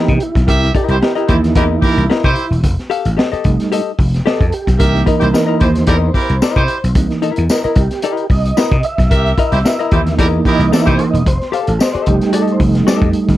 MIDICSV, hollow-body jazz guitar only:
0, 0, Header, 1, 2, 480
1, 0, Start_track
1, 0, Tempo, 538600
1, 430, Time_signature, 4, 2, 24, 8
1, 11917, End_track
2, 0, Start_track
2, 0, Title_t, "Hollow-body jazz guitar"
2, 0, Program_c, 0, 26
2, 0, Note_on_c, 0, 64, 92
2, 0, Note_on_c, 0, 70, 96
2, 0, Note_on_c, 0, 75, 100
2, 107, Note_off_c, 0, 64, 0
2, 111, Note_off_c, 0, 70, 0
2, 114, Note_off_c, 0, 75, 0
2, 665, Note_on_c, 0, 64, 84
2, 672, Note_on_c, 0, 70, 90
2, 678, Note_on_c, 0, 75, 92
2, 851, Note_off_c, 0, 64, 0
2, 855, Note_off_c, 0, 70, 0
2, 858, Note_off_c, 0, 75, 0
2, 903, Note_on_c, 0, 64, 66
2, 912, Note_on_c, 0, 70, 70
2, 916, Note_on_c, 0, 75, 70
2, 1017, Note_off_c, 0, 75, 0
2, 1023, Note_off_c, 0, 70, 0
2, 1028, Note_on_c, 0, 75, 94
2, 1029, Note_off_c, 0, 64, 0
2, 1034, Note_on_c, 0, 70, 87
2, 1039, Note_on_c, 0, 64, 78
2, 1186, Note_off_c, 0, 75, 0
2, 1189, Note_off_c, 0, 70, 0
2, 1192, Note_off_c, 0, 64, 0
2, 1386, Note_on_c, 0, 64, 79
2, 1395, Note_on_c, 0, 70, 81
2, 1399, Note_on_c, 0, 75, 93
2, 1552, Note_off_c, 0, 64, 0
2, 1557, Note_off_c, 0, 70, 0
2, 1558, Note_off_c, 0, 75, 0
2, 1868, Note_on_c, 0, 64, 86
2, 1872, Note_on_c, 0, 70, 102
2, 1881, Note_on_c, 0, 75, 95
2, 2034, Note_off_c, 0, 64, 0
2, 2036, Note_off_c, 0, 70, 0
2, 2040, Note_off_c, 0, 75, 0
2, 2582, Note_on_c, 0, 67, 83
2, 2585, Note_on_c, 0, 69, 84
2, 2592, Note_on_c, 0, 77, 94
2, 2752, Note_off_c, 0, 67, 0
2, 2753, Note_off_c, 0, 69, 0
2, 2757, Note_off_c, 0, 77, 0
2, 2822, Note_on_c, 0, 67, 63
2, 2829, Note_on_c, 0, 69, 69
2, 2834, Note_on_c, 0, 75, 73
2, 2946, Note_off_c, 0, 75, 0
2, 2951, Note_off_c, 0, 69, 0
2, 2956, Note_on_c, 0, 75, 82
2, 2959, Note_off_c, 0, 67, 0
2, 2962, Note_on_c, 0, 69, 81
2, 2970, Note_on_c, 0, 67, 68
2, 3113, Note_off_c, 0, 75, 0
2, 3116, Note_off_c, 0, 69, 0
2, 3120, Note_off_c, 0, 67, 0
2, 3312, Note_on_c, 0, 67, 80
2, 3320, Note_on_c, 0, 69, 88
2, 3327, Note_on_c, 0, 75, 90
2, 3477, Note_off_c, 0, 67, 0
2, 3481, Note_off_c, 0, 69, 0
2, 3485, Note_off_c, 0, 75, 0
2, 3793, Note_on_c, 0, 67, 85
2, 3801, Note_on_c, 0, 69, 101
2, 3804, Note_on_c, 0, 75, 98
2, 3958, Note_off_c, 0, 67, 0
2, 3962, Note_off_c, 0, 69, 0
2, 3964, Note_off_c, 0, 75, 0
2, 4511, Note_on_c, 0, 64, 78
2, 4519, Note_on_c, 0, 70, 90
2, 4526, Note_on_c, 0, 75, 84
2, 4677, Note_off_c, 0, 64, 0
2, 4682, Note_off_c, 0, 70, 0
2, 4685, Note_off_c, 0, 75, 0
2, 4751, Note_on_c, 0, 64, 60
2, 4757, Note_on_c, 0, 70, 67
2, 4763, Note_on_c, 0, 75, 66
2, 4861, Note_off_c, 0, 75, 0
2, 4871, Note_on_c, 0, 75, 83
2, 4872, Note_off_c, 0, 70, 0
2, 4877, Note_off_c, 0, 64, 0
2, 4883, Note_on_c, 0, 70, 66
2, 4888, Note_on_c, 0, 64, 70
2, 5031, Note_off_c, 0, 75, 0
2, 5037, Note_off_c, 0, 70, 0
2, 5039, Note_off_c, 0, 64, 0
2, 5236, Note_on_c, 0, 64, 79
2, 5246, Note_on_c, 0, 70, 87
2, 5252, Note_on_c, 0, 75, 98
2, 5421, Note_off_c, 0, 64, 0
2, 5426, Note_off_c, 0, 70, 0
2, 5429, Note_off_c, 0, 75, 0
2, 5721, Note_on_c, 0, 64, 81
2, 5724, Note_on_c, 0, 70, 86
2, 5734, Note_on_c, 0, 75, 105
2, 5903, Note_off_c, 0, 64, 0
2, 5905, Note_off_c, 0, 70, 0
2, 5910, Note_off_c, 0, 75, 0
2, 6435, Note_on_c, 0, 64, 82
2, 6444, Note_on_c, 0, 70, 79
2, 6450, Note_on_c, 0, 76, 82
2, 6620, Note_off_c, 0, 64, 0
2, 6625, Note_off_c, 0, 70, 0
2, 6628, Note_off_c, 0, 76, 0
2, 6684, Note_on_c, 0, 64, 56
2, 6691, Note_on_c, 0, 70, 61
2, 6697, Note_on_c, 0, 75, 69
2, 6799, Note_off_c, 0, 75, 0
2, 6805, Note_off_c, 0, 70, 0
2, 6810, Note_on_c, 0, 75, 82
2, 6812, Note_off_c, 0, 64, 0
2, 6816, Note_on_c, 0, 70, 73
2, 6822, Note_on_c, 0, 64, 70
2, 6960, Note_off_c, 0, 75, 0
2, 6963, Note_off_c, 0, 70, 0
2, 6966, Note_off_c, 0, 64, 0
2, 7162, Note_on_c, 0, 64, 90
2, 7166, Note_on_c, 0, 70, 83
2, 7170, Note_on_c, 0, 75, 86
2, 7343, Note_off_c, 0, 64, 0
2, 7345, Note_off_c, 0, 70, 0
2, 7347, Note_off_c, 0, 75, 0
2, 7638, Note_on_c, 0, 64, 88
2, 7646, Note_on_c, 0, 70, 97
2, 7649, Note_on_c, 0, 75, 103
2, 7800, Note_off_c, 0, 64, 0
2, 7804, Note_off_c, 0, 70, 0
2, 7806, Note_off_c, 0, 75, 0
2, 8359, Note_on_c, 0, 64, 80
2, 8366, Note_on_c, 0, 70, 87
2, 8372, Note_on_c, 0, 75, 90
2, 8520, Note_off_c, 0, 64, 0
2, 8524, Note_off_c, 0, 70, 0
2, 8527, Note_off_c, 0, 75, 0
2, 8598, Note_on_c, 0, 64, 65
2, 8600, Note_on_c, 0, 70, 61
2, 8610, Note_on_c, 0, 75, 66
2, 8717, Note_off_c, 0, 75, 0
2, 8725, Note_off_c, 0, 70, 0
2, 8727, Note_on_c, 0, 75, 91
2, 8728, Note_off_c, 0, 64, 0
2, 8735, Note_on_c, 0, 70, 81
2, 8739, Note_on_c, 0, 64, 78
2, 8878, Note_off_c, 0, 75, 0
2, 8882, Note_off_c, 0, 70, 0
2, 8884, Note_off_c, 0, 64, 0
2, 9076, Note_on_c, 0, 64, 81
2, 9083, Note_on_c, 0, 70, 96
2, 9090, Note_on_c, 0, 75, 93
2, 9259, Note_off_c, 0, 64, 0
2, 9263, Note_off_c, 0, 70, 0
2, 9266, Note_off_c, 0, 75, 0
2, 9557, Note_on_c, 0, 64, 92
2, 9562, Note_on_c, 0, 70, 95
2, 9570, Note_on_c, 0, 75, 100
2, 9739, Note_off_c, 0, 64, 0
2, 9742, Note_off_c, 0, 70, 0
2, 9746, Note_off_c, 0, 75, 0
2, 10267, Note_on_c, 0, 67, 89
2, 10275, Note_on_c, 0, 69, 87
2, 10282, Note_on_c, 0, 77, 91
2, 10433, Note_off_c, 0, 67, 0
2, 10437, Note_off_c, 0, 69, 0
2, 10441, Note_off_c, 0, 77, 0
2, 10509, Note_on_c, 0, 67, 62
2, 10519, Note_on_c, 0, 69, 61
2, 10523, Note_on_c, 0, 75, 75
2, 10626, Note_off_c, 0, 75, 0
2, 10636, Note_off_c, 0, 69, 0
2, 10636, Note_on_c, 0, 75, 82
2, 10642, Note_off_c, 0, 67, 0
2, 10647, Note_on_c, 0, 69, 76
2, 10651, Note_on_c, 0, 67, 71
2, 10815, Note_off_c, 0, 75, 0
2, 10820, Note_off_c, 0, 69, 0
2, 10822, Note_off_c, 0, 67, 0
2, 10986, Note_on_c, 0, 67, 89
2, 10993, Note_on_c, 0, 69, 93
2, 10998, Note_on_c, 0, 75, 98
2, 11173, Note_off_c, 0, 67, 0
2, 11177, Note_off_c, 0, 69, 0
2, 11179, Note_off_c, 0, 75, 0
2, 11467, Note_on_c, 0, 67, 85
2, 11479, Note_on_c, 0, 69, 100
2, 11483, Note_on_c, 0, 75, 100
2, 11654, Note_off_c, 0, 67, 0
2, 11660, Note_off_c, 0, 69, 0
2, 11662, Note_off_c, 0, 75, 0
2, 11917, End_track
0, 0, End_of_file